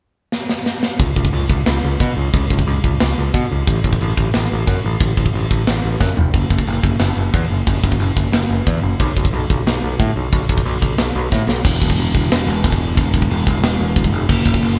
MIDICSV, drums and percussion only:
0, 0, Header, 1, 2, 480
1, 0, Start_track
1, 0, Tempo, 333704
1, 1438, Time_signature, 4, 2, 24, 8
1, 12954, Tempo, 330579
1, 21353, End_track
2, 0, Start_track
2, 0, Title_t, "Drums"
2, 465, Note_on_c, 9, 38, 66
2, 609, Note_off_c, 9, 38, 0
2, 711, Note_on_c, 9, 38, 75
2, 855, Note_off_c, 9, 38, 0
2, 951, Note_on_c, 9, 38, 72
2, 1095, Note_off_c, 9, 38, 0
2, 1191, Note_on_c, 9, 38, 90
2, 1335, Note_off_c, 9, 38, 0
2, 1433, Note_on_c, 9, 36, 107
2, 1440, Note_on_c, 9, 52, 53
2, 1577, Note_off_c, 9, 36, 0
2, 1584, Note_off_c, 9, 52, 0
2, 1673, Note_on_c, 9, 36, 78
2, 1793, Note_off_c, 9, 36, 0
2, 1793, Note_on_c, 9, 36, 80
2, 1917, Note_on_c, 9, 52, 54
2, 1937, Note_off_c, 9, 36, 0
2, 2061, Note_off_c, 9, 52, 0
2, 2151, Note_on_c, 9, 36, 82
2, 2295, Note_off_c, 9, 36, 0
2, 2392, Note_on_c, 9, 38, 108
2, 2392, Note_on_c, 9, 52, 56
2, 2536, Note_off_c, 9, 38, 0
2, 2536, Note_off_c, 9, 52, 0
2, 2879, Note_on_c, 9, 36, 78
2, 2881, Note_on_c, 9, 52, 53
2, 3023, Note_off_c, 9, 36, 0
2, 3024, Note_off_c, 9, 52, 0
2, 3361, Note_on_c, 9, 36, 105
2, 3361, Note_on_c, 9, 52, 55
2, 3505, Note_off_c, 9, 36, 0
2, 3505, Note_off_c, 9, 52, 0
2, 3602, Note_on_c, 9, 36, 83
2, 3722, Note_off_c, 9, 36, 0
2, 3722, Note_on_c, 9, 36, 83
2, 3845, Note_on_c, 9, 52, 50
2, 3866, Note_off_c, 9, 36, 0
2, 3989, Note_off_c, 9, 52, 0
2, 4085, Note_on_c, 9, 36, 82
2, 4229, Note_off_c, 9, 36, 0
2, 4321, Note_on_c, 9, 38, 110
2, 4321, Note_on_c, 9, 52, 52
2, 4465, Note_off_c, 9, 38, 0
2, 4465, Note_off_c, 9, 52, 0
2, 4805, Note_on_c, 9, 52, 46
2, 4807, Note_on_c, 9, 36, 77
2, 4949, Note_off_c, 9, 52, 0
2, 4951, Note_off_c, 9, 36, 0
2, 5279, Note_on_c, 9, 52, 51
2, 5285, Note_on_c, 9, 36, 108
2, 5423, Note_off_c, 9, 52, 0
2, 5429, Note_off_c, 9, 36, 0
2, 5527, Note_on_c, 9, 36, 77
2, 5648, Note_off_c, 9, 36, 0
2, 5648, Note_on_c, 9, 36, 80
2, 5765, Note_on_c, 9, 52, 55
2, 5792, Note_off_c, 9, 36, 0
2, 5909, Note_off_c, 9, 52, 0
2, 6005, Note_on_c, 9, 36, 80
2, 6149, Note_off_c, 9, 36, 0
2, 6241, Note_on_c, 9, 38, 106
2, 6241, Note_on_c, 9, 52, 58
2, 6385, Note_off_c, 9, 38, 0
2, 6385, Note_off_c, 9, 52, 0
2, 6724, Note_on_c, 9, 36, 75
2, 6729, Note_on_c, 9, 52, 52
2, 6868, Note_off_c, 9, 36, 0
2, 6873, Note_off_c, 9, 52, 0
2, 7196, Note_on_c, 9, 52, 55
2, 7200, Note_on_c, 9, 36, 108
2, 7340, Note_off_c, 9, 52, 0
2, 7343, Note_off_c, 9, 36, 0
2, 7441, Note_on_c, 9, 36, 80
2, 7561, Note_off_c, 9, 36, 0
2, 7561, Note_on_c, 9, 36, 80
2, 7695, Note_on_c, 9, 52, 55
2, 7705, Note_off_c, 9, 36, 0
2, 7838, Note_off_c, 9, 52, 0
2, 7923, Note_on_c, 9, 36, 80
2, 8067, Note_off_c, 9, 36, 0
2, 8160, Note_on_c, 9, 38, 109
2, 8160, Note_on_c, 9, 52, 55
2, 8304, Note_off_c, 9, 38, 0
2, 8304, Note_off_c, 9, 52, 0
2, 8637, Note_on_c, 9, 38, 55
2, 8639, Note_on_c, 9, 36, 77
2, 8781, Note_off_c, 9, 38, 0
2, 8783, Note_off_c, 9, 36, 0
2, 8876, Note_on_c, 9, 43, 85
2, 9020, Note_off_c, 9, 43, 0
2, 9110, Note_on_c, 9, 52, 50
2, 9117, Note_on_c, 9, 36, 112
2, 9254, Note_off_c, 9, 52, 0
2, 9261, Note_off_c, 9, 36, 0
2, 9356, Note_on_c, 9, 36, 79
2, 9472, Note_off_c, 9, 36, 0
2, 9472, Note_on_c, 9, 36, 76
2, 9590, Note_on_c, 9, 52, 55
2, 9616, Note_off_c, 9, 36, 0
2, 9734, Note_off_c, 9, 52, 0
2, 9832, Note_on_c, 9, 36, 84
2, 9976, Note_off_c, 9, 36, 0
2, 10064, Note_on_c, 9, 38, 110
2, 10064, Note_on_c, 9, 52, 57
2, 10208, Note_off_c, 9, 38, 0
2, 10208, Note_off_c, 9, 52, 0
2, 10554, Note_on_c, 9, 52, 51
2, 10555, Note_on_c, 9, 36, 77
2, 10698, Note_off_c, 9, 36, 0
2, 10698, Note_off_c, 9, 52, 0
2, 11030, Note_on_c, 9, 52, 57
2, 11033, Note_on_c, 9, 36, 104
2, 11174, Note_off_c, 9, 52, 0
2, 11177, Note_off_c, 9, 36, 0
2, 11271, Note_on_c, 9, 36, 83
2, 11390, Note_off_c, 9, 36, 0
2, 11390, Note_on_c, 9, 36, 83
2, 11510, Note_on_c, 9, 52, 57
2, 11534, Note_off_c, 9, 36, 0
2, 11654, Note_off_c, 9, 52, 0
2, 11747, Note_on_c, 9, 36, 84
2, 11891, Note_off_c, 9, 36, 0
2, 11988, Note_on_c, 9, 38, 102
2, 11988, Note_on_c, 9, 52, 52
2, 12131, Note_off_c, 9, 38, 0
2, 12131, Note_off_c, 9, 52, 0
2, 12468, Note_on_c, 9, 36, 76
2, 12474, Note_on_c, 9, 52, 48
2, 12612, Note_off_c, 9, 36, 0
2, 12618, Note_off_c, 9, 52, 0
2, 12938, Note_on_c, 9, 52, 49
2, 12943, Note_on_c, 9, 36, 107
2, 13083, Note_off_c, 9, 52, 0
2, 13089, Note_off_c, 9, 36, 0
2, 13186, Note_on_c, 9, 36, 74
2, 13308, Note_off_c, 9, 36, 0
2, 13308, Note_on_c, 9, 36, 82
2, 13441, Note_on_c, 9, 52, 50
2, 13453, Note_off_c, 9, 36, 0
2, 13586, Note_off_c, 9, 52, 0
2, 13673, Note_on_c, 9, 36, 89
2, 13818, Note_off_c, 9, 36, 0
2, 13921, Note_on_c, 9, 38, 107
2, 13921, Note_on_c, 9, 52, 49
2, 14066, Note_off_c, 9, 38, 0
2, 14066, Note_off_c, 9, 52, 0
2, 14393, Note_on_c, 9, 36, 79
2, 14399, Note_on_c, 9, 52, 46
2, 14538, Note_off_c, 9, 36, 0
2, 14544, Note_off_c, 9, 52, 0
2, 14871, Note_on_c, 9, 52, 53
2, 14872, Note_on_c, 9, 36, 105
2, 15017, Note_off_c, 9, 36, 0
2, 15017, Note_off_c, 9, 52, 0
2, 15113, Note_on_c, 9, 36, 80
2, 15234, Note_off_c, 9, 36, 0
2, 15234, Note_on_c, 9, 36, 78
2, 15360, Note_on_c, 9, 52, 54
2, 15379, Note_off_c, 9, 36, 0
2, 15505, Note_off_c, 9, 52, 0
2, 15592, Note_on_c, 9, 36, 84
2, 15737, Note_off_c, 9, 36, 0
2, 15827, Note_on_c, 9, 38, 110
2, 15827, Note_on_c, 9, 52, 58
2, 15972, Note_off_c, 9, 38, 0
2, 15972, Note_off_c, 9, 52, 0
2, 16315, Note_on_c, 9, 36, 72
2, 16323, Note_on_c, 9, 38, 54
2, 16460, Note_off_c, 9, 36, 0
2, 16469, Note_off_c, 9, 38, 0
2, 16561, Note_on_c, 9, 38, 84
2, 16706, Note_off_c, 9, 38, 0
2, 16789, Note_on_c, 9, 49, 118
2, 16789, Note_on_c, 9, 52, 59
2, 16791, Note_on_c, 9, 36, 118
2, 16934, Note_off_c, 9, 49, 0
2, 16934, Note_off_c, 9, 52, 0
2, 16936, Note_off_c, 9, 36, 0
2, 17034, Note_on_c, 9, 36, 85
2, 17155, Note_off_c, 9, 36, 0
2, 17155, Note_on_c, 9, 36, 87
2, 17278, Note_on_c, 9, 52, 60
2, 17300, Note_off_c, 9, 36, 0
2, 17423, Note_off_c, 9, 52, 0
2, 17514, Note_on_c, 9, 36, 87
2, 17659, Note_off_c, 9, 36, 0
2, 17765, Note_on_c, 9, 38, 119
2, 17765, Note_on_c, 9, 52, 63
2, 17911, Note_off_c, 9, 38, 0
2, 17911, Note_off_c, 9, 52, 0
2, 18234, Note_on_c, 9, 36, 82
2, 18238, Note_on_c, 9, 52, 62
2, 18353, Note_off_c, 9, 36, 0
2, 18353, Note_on_c, 9, 36, 90
2, 18383, Note_off_c, 9, 52, 0
2, 18498, Note_off_c, 9, 36, 0
2, 18714, Note_on_c, 9, 52, 68
2, 18715, Note_on_c, 9, 36, 112
2, 18859, Note_off_c, 9, 52, 0
2, 18860, Note_off_c, 9, 36, 0
2, 18954, Note_on_c, 9, 36, 86
2, 19075, Note_off_c, 9, 36, 0
2, 19075, Note_on_c, 9, 36, 90
2, 19195, Note_on_c, 9, 52, 73
2, 19220, Note_off_c, 9, 36, 0
2, 19340, Note_off_c, 9, 52, 0
2, 19434, Note_on_c, 9, 36, 90
2, 19580, Note_off_c, 9, 36, 0
2, 19677, Note_on_c, 9, 38, 116
2, 19677, Note_on_c, 9, 52, 65
2, 19822, Note_off_c, 9, 38, 0
2, 19822, Note_off_c, 9, 52, 0
2, 20145, Note_on_c, 9, 52, 57
2, 20151, Note_on_c, 9, 36, 82
2, 20269, Note_off_c, 9, 36, 0
2, 20269, Note_on_c, 9, 36, 88
2, 20290, Note_off_c, 9, 52, 0
2, 20414, Note_off_c, 9, 36, 0
2, 20623, Note_on_c, 9, 52, 61
2, 20623, Note_on_c, 9, 57, 108
2, 20630, Note_on_c, 9, 36, 120
2, 20768, Note_off_c, 9, 52, 0
2, 20768, Note_off_c, 9, 57, 0
2, 20775, Note_off_c, 9, 36, 0
2, 20868, Note_on_c, 9, 36, 85
2, 20990, Note_off_c, 9, 36, 0
2, 20990, Note_on_c, 9, 36, 90
2, 21113, Note_on_c, 9, 52, 66
2, 21135, Note_off_c, 9, 36, 0
2, 21258, Note_off_c, 9, 52, 0
2, 21353, End_track
0, 0, End_of_file